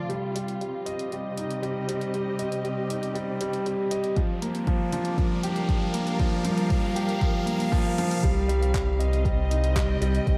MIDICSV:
0, 0, Header, 1, 6, 480
1, 0, Start_track
1, 0, Tempo, 508475
1, 100, Time_signature, 4, 2, 24, 8
1, 9798, End_track
2, 0, Start_track
2, 0, Title_t, "String section"
2, 0, Program_c, 0, 48
2, 0, Note_on_c, 0, 50, 59
2, 0, Note_on_c, 0, 57, 63
2, 0, Note_on_c, 0, 65, 70
2, 0, Note_on_c, 0, 74, 65
2, 96, Note_off_c, 0, 50, 0
2, 99, Note_off_c, 0, 57, 0
2, 100, Note_off_c, 0, 74, 0
2, 101, Note_on_c, 0, 48, 66
2, 463, Note_on_c, 0, 60, 62
2, 704, Note_on_c, 0, 75, 59
2, 710, Note_on_c, 0, 67, 74
2, 1640, Note_off_c, 0, 65, 0
2, 3940, Note_off_c, 0, 48, 0
2, 3942, Note_on_c, 0, 55, 86
2, 3952, Note_off_c, 0, 75, 0
2, 4300, Note_on_c, 0, 62, 67
2, 4601, Note_on_c, 0, 70, 80
2, 4800, Note_off_c, 0, 67, 0
2, 5108, Note_on_c, 0, 77, 77
2, 5480, Note_off_c, 0, 60, 0
2, 7778, Note_off_c, 0, 62, 0
2, 7778, Note_on_c, 0, 48, 71
2, 7781, Note_off_c, 0, 55, 0
2, 7975, Note_on_c, 0, 60, 73
2, 8545, Note_on_c, 0, 75, 92
2, 8760, Note_off_c, 0, 70, 0
2, 9196, Note_on_c, 0, 79, 67
2, 9311, Note_off_c, 0, 77, 0
2, 9798, Note_off_c, 0, 48, 0
2, 9798, Note_off_c, 0, 60, 0
2, 9798, Note_off_c, 0, 75, 0
2, 9798, Note_off_c, 0, 79, 0
2, 9798, End_track
3, 0, Start_track
3, 0, Title_t, "Grand piano"
3, 0, Program_c, 1, 0
3, 0, Control_c, 1, 64, 127
3, 0, Note_on_c, 1, 53, 70
3, 0, Note_on_c, 1, 62, 67
3, 0, Note_on_c, 1, 74, 68
3, 88, Note_on_c, 1, 55, 90
3, 112, Control_c, 1, 64, 0
3, 115, Note_off_c, 1, 74, 0
3, 116, Note_off_c, 1, 62, 0
3, 117, Note_off_c, 1, 53, 0
3, 274, Control_c, 1, 64, 127
3, 320, Note_off_c, 1, 55, 0
3, 334, Note_on_c, 1, 55, 85
3, 564, Note_off_c, 1, 55, 0
3, 578, Note_on_c, 1, 55, 63
3, 807, Note_off_c, 1, 55, 0
3, 811, Note_on_c, 1, 75, 67
3, 952, Note_off_c, 1, 75, 0
3, 1059, Note_on_c, 1, 55, 71
3, 1196, Note_off_c, 1, 55, 0
3, 1301, Note_on_c, 1, 63, 65
3, 1529, Note_off_c, 1, 63, 0
3, 1534, Note_on_c, 1, 55, 94
3, 1765, Note_off_c, 1, 55, 0
3, 1782, Note_on_c, 1, 55, 95
3, 2009, Note_off_c, 1, 55, 0
3, 2023, Note_on_c, 1, 55, 78
3, 2250, Note_off_c, 1, 55, 0
3, 2256, Note_on_c, 1, 75, 68
3, 2395, Note_off_c, 1, 75, 0
3, 2495, Note_on_c, 1, 55, 68
3, 2635, Note_off_c, 1, 55, 0
3, 2736, Note_on_c, 1, 63, 68
3, 2966, Note_off_c, 1, 63, 0
3, 2970, Note_on_c, 1, 55, 95
3, 3203, Note_off_c, 1, 55, 0
3, 3218, Note_on_c, 1, 55, 95
3, 3445, Note_off_c, 1, 55, 0
3, 3459, Note_on_c, 1, 55, 76
3, 3688, Note_off_c, 1, 55, 0
3, 3692, Note_on_c, 1, 75, 74
3, 3833, Note_off_c, 1, 75, 0
3, 3936, Note_on_c, 1, 53, 81
3, 3951, Control_c, 1, 64, 0
3, 4075, Note_off_c, 1, 53, 0
3, 4110, Control_c, 1, 64, 127
3, 4172, Note_on_c, 1, 58, 73
3, 4404, Note_off_c, 1, 58, 0
3, 4412, Note_on_c, 1, 53, 95
3, 4639, Note_off_c, 1, 53, 0
3, 4653, Note_on_c, 1, 53, 97
3, 4877, Note_off_c, 1, 53, 0
3, 4891, Note_on_c, 1, 53, 85
3, 5123, Note_off_c, 1, 53, 0
3, 5130, Note_on_c, 1, 67, 78
3, 5272, Note_off_c, 1, 67, 0
3, 5374, Note_on_c, 1, 53, 74
3, 5514, Note_off_c, 1, 53, 0
3, 5610, Note_on_c, 1, 58, 74
3, 5843, Note_off_c, 1, 58, 0
3, 5850, Note_on_c, 1, 53, 102
3, 6075, Note_off_c, 1, 53, 0
3, 6089, Note_on_c, 1, 53, 101
3, 6310, Note_off_c, 1, 53, 0
3, 6324, Note_on_c, 1, 53, 74
3, 6560, Note_off_c, 1, 53, 0
3, 6568, Note_on_c, 1, 67, 75
3, 6711, Note_off_c, 1, 67, 0
3, 6807, Note_on_c, 1, 53, 82
3, 6950, Note_off_c, 1, 53, 0
3, 7044, Note_on_c, 1, 58, 77
3, 7280, Note_off_c, 1, 58, 0
3, 7287, Note_on_c, 1, 53, 105
3, 7522, Note_off_c, 1, 53, 0
3, 7538, Note_on_c, 1, 53, 107
3, 7767, Note_off_c, 1, 53, 0
3, 7770, Note_on_c, 1, 55, 103
3, 7792, Control_c, 1, 64, 0
3, 7982, Control_c, 1, 64, 127
3, 7995, Note_off_c, 1, 55, 0
3, 8009, Note_on_c, 1, 55, 100
3, 8234, Note_off_c, 1, 55, 0
3, 8248, Note_on_c, 1, 55, 69
3, 8482, Note_off_c, 1, 55, 0
3, 8491, Note_on_c, 1, 75, 69
3, 8632, Note_off_c, 1, 75, 0
3, 8729, Note_on_c, 1, 55, 83
3, 8872, Note_off_c, 1, 55, 0
3, 8969, Note_on_c, 1, 63, 81
3, 9203, Note_off_c, 1, 63, 0
3, 9208, Note_on_c, 1, 55, 101
3, 9439, Note_off_c, 1, 55, 0
3, 9453, Note_on_c, 1, 55, 106
3, 9677, Note_off_c, 1, 55, 0
3, 9692, Note_on_c, 1, 55, 79
3, 9798, Note_off_c, 1, 55, 0
3, 9798, End_track
4, 0, Start_track
4, 0, Title_t, "Analog synth bass"
4, 0, Program_c, 2, 38
4, 7774, Note_on_c, 2, 36, 104
4, 9405, Note_off_c, 2, 36, 0
4, 9453, Note_on_c, 2, 36, 101
4, 9631, Note_off_c, 2, 36, 0
4, 9694, Note_on_c, 2, 36, 101
4, 9798, Note_off_c, 2, 36, 0
4, 9798, End_track
5, 0, Start_track
5, 0, Title_t, "Riser"
5, 0, Program_c, 3, 103
5, 95, Note_on_c, 3, 60, 74
5, 7778, Note_off_c, 3, 60, 0
5, 9798, End_track
6, 0, Start_track
6, 0, Title_t, "Drums"
6, 93, Note_on_c, 9, 42, 29
6, 187, Note_off_c, 9, 42, 0
6, 337, Note_on_c, 9, 42, 64
6, 431, Note_off_c, 9, 42, 0
6, 456, Note_on_c, 9, 42, 38
6, 550, Note_off_c, 9, 42, 0
6, 579, Note_on_c, 9, 42, 27
6, 673, Note_off_c, 9, 42, 0
6, 816, Note_on_c, 9, 42, 66
6, 910, Note_off_c, 9, 42, 0
6, 938, Note_on_c, 9, 42, 36
6, 1032, Note_off_c, 9, 42, 0
6, 1060, Note_on_c, 9, 42, 29
6, 1154, Note_off_c, 9, 42, 0
6, 1298, Note_on_c, 9, 42, 64
6, 1393, Note_off_c, 9, 42, 0
6, 1421, Note_on_c, 9, 42, 37
6, 1516, Note_off_c, 9, 42, 0
6, 1541, Note_on_c, 9, 42, 30
6, 1635, Note_off_c, 9, 42, 0
6, 1782, Note_on_c, 9, 42, 70
6, 1876, Note_off_c, 9, 42, 0
6, 1901, Note_on_c, 9, 42, 38
6, 1995, Note_off_c, 9, 42, 0
6, 2020, Note_on_c, 9, 42, 31
6, 2114, Note_off_c, 9, 42, 0
6, 2257, Note_on_c, 9, 42, 68
6, 2352, Note_off_c, 9, 42, 0
6, 2380, Note_on_c, 9, 42, 40
6, 2474, Note_off_c, 9, 42, 0
6, 2500, Note_on_c, 9, 42, 31
6, 2594, Note_off_c, 9, 42, 0
6, 2740, Note_on_c, 9, 42, 73
6, 2834, Note_off_c, 9, 42, 0
6, 2859, Note_on_c, 9, 42, 35
6, 2953, Note_off_c, 9, 42, 0
6, 2979, Note_on_c, 9, 42, 33
6, 3073, Note_off_c, 9, 42, 0
6, 3216, Note_on_c, 9, 42, 68
6, 3310, Note_off_c, 9, 42, 0
6, 3336, Note_on_c, 9, 42, 39
6, 3430, Note_off_c, 9, 42, 0
6, 3457, Note_on_c, 9, 42, 33
6, 3552, Note_off_c, 9, 42, 0
6, 3693, Note_on_c, 9, 42, 73
6, 3787, Note_off_c, 9, 42, 0
6, 3811, Note_on_c, 9, 42, 40
6, 3905, Note_off_c, 9, 42, 0
6, 3932, Note_on_c, 9, 42, 32
6, 3933, Note_on_c, 9, 36, 99
6, 4026, Note_off_c, 9, 42, 0
6, 4027, Note_off_c, 9, 36, 0
6, 4175, Note_on_c, 9, 42, 70
6, 4269, Note_off_c, 9, 42, 0
6, 4292, Note_on_c, 9, 42, 41
6, 4387, Note_off_c, 9, 42, 0
6, 4410, Note_on_c, 9, 42, 30
6, 4411, Note_on_c, 9, 36, 105
6, 4505, Note_off_c, 9, 36, 0
6, 4505, Note_off_c, 9, 42, 0
6, 4649, Note_on_c, 9, 42, 76
6, 4744, Note_off_c, 9, 42, 0
6, 4766, Note_on_c, 9, 42, 39
6, 4861, Note_off_c, 9, 42, 0
6, 4889, Note_on_c, 9, 36, 102
6, 4890, Note_on_c, 9, 42, 33
6, 4983, Note_off_c, 9, 36, 0
6, 4985, Note_off_c, 9, 42, 0
6, 5130, Note_on_c, 9, 42, 75
6, 5225, Note_off_c, 9, 42, 0
6, 5248, Note_on_c, 9, 42, 41
6, 5343, Note_off_c, 9, 42, 0
6, 5369, Note_on_c, 9, 36, 103
6, 5369, Note_on_c, 9, 42, 31
6, 5464, Note_off_c, 9, 36, 0
6, 5464, Note_off_c, 9, 42, 0
6, 5607, Note_on_c, 9, 42, 76
6, 5702, Note_off_c, 9, 42, 0
6, 5728, Note_on_c, 9, 42, 43
6, 5822, Note_off_c, 9, 42, 0
6, 5848, Note_on_c, 9, 42, 32
6, 5849, Note_on_c, 9, 36, 105
6, 5943, Note_off_c, 9, 42, 0
6, 5944, Note_off_c, 9, 36, 0
6, 6085, Note_on_c, 9, 42, 74
6, 6179, Note_off_c, 9, 42, 0
6, 6207, Note_on_c, 9, 42, 46
6, 6302, Note_off_c, 9, 42, 0
6, 6327, Note_on_c, 9, 42, 32
6, 6330, Note_on_c, 9, 36, 101
6, 6422, Note_off_c, 9, 42, 0
6, 6425, Note_off_c, 9, 36, 0
6, 6573, Note_on_c, 9, 42, 78
6, 6667, Note_off_c, 9, 42, 0
6, 6690, Note_on_c, 9, 42, 41
6, 6784, Note_off_c, 9, 42, 0
6, 6810, Note_on_c, 9, 36, 108
6, 6810, Note_on_c, 9, 42, 34
6, 6905, Note_off_c, 9, 36, 0
6, 6905, Note_off_c, 9, 42, 0
6, 7053, Note_on_c, 9, 42, 72
6, 7147, Note_off_c, 9, 42, 0
6, 7175, Note_on_c, 9, 42, 43
6, 7270, Note_off_c, 9, 42, 0
6, 7291, Note_on_c, 9, 36, 102
6, 7293, Note_on_c, 9, 42, 35
6, 7386, Note_off_c, 9, 36, 0
6, 7388, Note_off_c, 9, 42, 0
6, 7536, Note_on_c, 9, 42, 80
6, 7631, Note_off_c, 9, 42, 0
6, 7659, Note_on_c, 9, 42, 43
6, 7753, Note_off_c, 9, 42, 0
6, 7772, Note_on_c, 9, 36, 98
6, 7781, Note_on_c, 9, 42, 32
6, 7867, Note_off_c, 9, 36, 0
6, 7876, Note_off_c, 9, 42, 0
6, 8019, Note_on_c, 9, 42, 74
6, 8113, Note_off_c, 9, 42, 0
6, 8143, Note_on_c, 9, 42, 40
6, 8237, Note_off_c, 9, 42, 0
6, 8253, Note_on_c, 9, 36, 99
6, 8260, Note_on_c, 9, 39, 90
6, 8260, Note_on_c, 9, 42, 31
6, 8348, Note_off_c, 9, 36, 0
6, 8354, Note_off_c, 9, 39, 0
6, 8354, Note_off_c, 9, 42, 0
6, 8501, Note_on_c, 9, 42, 76
6, 8595, Note_off_c, 9, 42, 0
6, 8620, Note_on_c, 9, 42, 40
6, 8715, Note_off_c, 9, 42, 0
6, 8733, Note_on_c, 9, 36, 100
6, 8738, Note_on_c, 9, 42, 32
6, 8828, Note_off_c, 9, 36, 0
6, 8833, Note_off_c, 9, 42, 0
6, 8980, Note_on_c, 9, 42, 73
6, 9074, Note_off_c, 9, 42, 0
6, 9098, Note_on_c, 9, 42, 42
6, 9192, Note_off_c, 9, 42, 0
6, 9213, Note_on_c, 9, 36, 98
6, 9221, Note_on_c, 9, 39, 103
6, 9221, Note_on_c, 9, 42, 31
6, 9308, Note_off_c, 9, 36, 0
6, 9315, Note_off_c, 9, 39, 0
6, 9315, Note_off_c, 9, 42, 0
6, 9457, Note_on_c, 9, 42, 77
6, 9552, Note_off_c, 9, 42, 0
6, 9578, Note_on_c, 9, 42, 43
6, 9672, Note_off_c, 9, 42, 0
6, 9694, Note_on_c, 9, 36, 115
6, 9697, Note_on_c, 9, 42, 33
6, 9788, Note_off_c, 9, 36, 0
6, 9791, Note_off_c, 9, 42, 0
6, 9798, End_track
0, 0, End_of_file